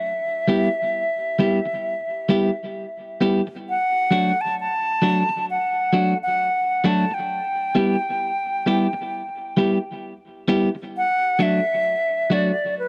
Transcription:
0.00 3.21 E5 loud
0.48 0.67 G3 medium
0.48 0.68 B3 medium
0.48 0.68 E4 medium
0.48 0.68 G4 medium
1.39 1.58 G3 medium
1.39 1.59 B3 medium
1.39 1.59 E4 medium
1.39 1.59 G4 medium
1.66 muted clean electric guitar stroke soft
2.29 2.49 G3 medium
2.29 2.49 B3 medium
2.29 2.49 E4 medium
2.29 2.50 G4 loud
3.21 3.40 G3 medium
3.21 3.41 B3 medium
3.21 3.41 E4 medium
3.21 3.41 G4 medium
3.47 muted clean electric guitar stroke soft
3.69 4.43 F#5 loud
4.11 4.31 F#3 medium
4.11 4.31 A3 medium
4.11 4.31 D4 medium
4.11 4.32 F#4 loud
4.41 4.58 A5 loud
4.60 5.46 A5 loud
5.02 5.22 F#3 medium
5.02 5.22 A3 medium
5.02 5.22 D4 medium
5.02 5.23 F#4 medium
5.29 muted clean electric guitar stroke medium
5.50 6.18 F#5 loud
5.93 6.13 F#3 medium
5.93 6.13 A3 medium
5.93 6.13 D4 loud
5.93 6.13 F#4 loud
6.23 6.88 F#5 loud
6.84 7.04 F#3 medium
6.84 7.04 A3 medium
6.84 7.04 D4 medium
6.84 7.05 F#4 medium
6.84 7.16 A5 loud
7.11 10.05 G5 medium
7.11 muted clean electric guitar stroke soft
7.75 7.95 G3 medium
7.75 7.95 B3 medium
7.75 7.96 E4 medium
7.75 7.96 G4 medium
8.66 8.86 G3 medium
8.66 8.86 B3 medium
8.66 8.87 E4 medium
8.66 8.87 G4 medium
8.93 muted clean electric guitar stroke medium
9.57 9.77 G3 medium
9.57 9.77 B3 medium
9.57 9.78 E4 medium
9.57 9.78 G4 medium
10.48 10.68 G3 medium
10.48 10.68 B3 medium
10.48 10.69 E4 loud
10.48 10.69 G4 loud
10.75 muted clean electric guitar stroke soft
10.97 11.44 F#5 loud
11.39 11.59 F#3 medium
11.39 11.59 A3 medium
11.39 11.60 D4 loud
11.39 11.60 F#4 medium
11.39 12.34 E5 loud
12.30 12.50 F#3 medium
12.30 12.51 A3 medium
12.30 12.51 D4 medium
12.30 12.51 F#4 medium
12.30 12.77 D5 medium
12.79 12.88 B4 loud

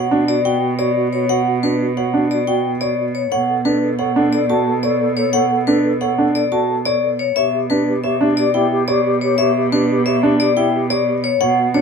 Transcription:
0.00 3.21 B2 medium
0.00 0.17 C#5 medium
0.00 0.17 F#5 medium
0.11 0.33 D4 medium
0.11 0.23 F#4 medium
0.27 0.40 F#4 medium
0.27 0.50 D5 medium
0.45 0.57 F#4 medium
0.45 0.67 F#4 medium
0.45 0.67 G5 medium
0.62 0.74 F#4 medium
0.78 0.90 F#4 medium
0.78 1.01 C#5 medium
0.78 1.01 D5 medium
0.96 1.07 F#4 medium
1.13 1.25 F#4 medium
1.13 1.35 C#5 medium
1.29 1.41 F#4 medium
1.29 1.51 C#5 medium
1.29 1.51 F#5 medium
1.46 1.58 F#4 medium
1.63 1.85 D4 medium
1.63 1.75 F#4 medium
1.63 1.85 B4 medium
1.80 1.92 F#4 medium
1.97 2.09 F#4 medium
1.97 2.19 C#5 medium
1.97 2.19 F#5 medium
2.14 2.36 D4 medium
2.14 2.26 F#4 medium
2.31 2.43 F#4 medium
2.31 2.53 D5 medium
2.47 2.70 F#4 medium
2.47 2.60 F#4 soft
2.47 2.69 G5 medium
2.65 2.77 F#4 soft
2.81 2.94 F#4 soft
2.81 3.03 C#5 medium
2.81 3.03 D5 medium
2.99 3.11 F#4 soft
3.15 3.37 C#5 medium
3.31 7.25 B2 medium
3.31 3.44 A4 soft
3.31 3.54 C#5 medium
3.31 3.54 F#5 medium
3.49 3.61 A4 soft
3.65 3.87 D4 medium
3.65 3.77 A4 soft
3.65 3.87 B4 medium
3.83 3.94 A4 medium
3.99 4.12 A4 medium
3.99 4.21 C#5 medium
3.99 4.21 F#5 medium
4.16 4.38 D4 medium
4.16 4.28 A4 medium
4.33 4.45 A4 medium
4.33 4.55 D5 medium
4.50 4.72 F#4 medium
4.50 4.62 A4 medium
4.50 4.72 A5 medium
4.67 4.79 A4 medium
4.83 4.95 A4 medium
4.83 5.05 C#5 medium
4.83 5.05 D5 medium
5.00 5.12 A4 medium
5.17 5.29 A4 medium
5.17 5.39 C#5 medium
5.33 5.46 A4 medium
5.33 5.56 C#5 medium
5.33 5.56 F#5 medium
5.51 5.63 A4 medium
5.67 5.90 D4 medium
5.67 5.79 A4 medium
5.67 5.90 B4 medium
5.84 5.96 A4 medium
6.01 6.13 A4 medium
6.01 6.23 C#5 medium
6.01 6.23 F#5 medium
6.18 6.40 D4 medium
6.18 6.30 A4 medium
6.35 6.47 A4 medium
6.35 6.57 D5 medium
6.52 6.74 F#4 medium
6.52 6.64 A4 medium
6.52 6.74 A5 medium
6.69 6.81 A4 soft
6.85 6.98 A4 soft
6.85 7.08 C#5 medium
6.85 7.08 D5 medium
7.03 7.15 A4 soft
7.19 7.41 C#5 medium
7.36 11.30 B2 medium
7.36 7.48 G4 soft
7.36 7.58 C#5 medium
7.36 7.58 E5 medium
7.53 7.65 G4 soft
7.70 7.92 D4 medium
7.70 7.82 G4 soft
7.70 7.92 B4 medium
7.87 7.99 G4 medium
8.04 8.16 G4 medium
8.04 8.26 C#5 medium
8.04 8.26 E5 medium
8.21 8.43 D4 medium
8.21 8.33 G4 medium
8.37 8.50 G4 medium
8.37 8.59 D5 medium
8.54 8.76 E4 medium
8.54 8.66 G4 medium
8.54 8.76 G5 medium
8.71 8.83 G4 medium
8.88 9.00 G4 medium
8.88 9.10 C#5 medium
8.88 9.10 D5 medium
9.05 9.17 G4 medium
9.21 9.34 G4 medium
9.21 9.44 C#5 medium
9.38 9.51 G4 medium
9.38 9.61 C#5 medium
9.38 9.60 E5 medium
9.56 9.68 G4 medium
9.72 9.94 D4 medium
9.72 9.84 G4 medium
9.72 9.94 B4 medium
9.90 10.01 G4 medium
10.06 10.18 G4 medium
10.06 10.28 C#5 medium
10.06 10.28 E5 medium
10.23 10.45 D4 medium
10.23 10.35 G4 medium
10.40 10.51 G4 medium
10.40 10.62 D5 medium
10.57 10.79 E4 medium
10.57 10.69 G4 medium
10.57 10.79 G5 medium
10.74 10.85 G4 medium
10.90 11.02 G4 soft
10.90 11.12 C#5 medium
10.90 11.12 D5 medium
11.07 11.19 G4 soft
11.24 11.46 C#5 medium
11.41 11.81 B2 medium
11.41 11.53 F#4 soft
11.41 11.63 C#5 medium
11.41 11.63 F#5 medium
11.57 11.69 F#4 soft
11.74 11.81 D4 medium
11.74 11.81 F#4 soft
11.74 11.81 C#5 medium

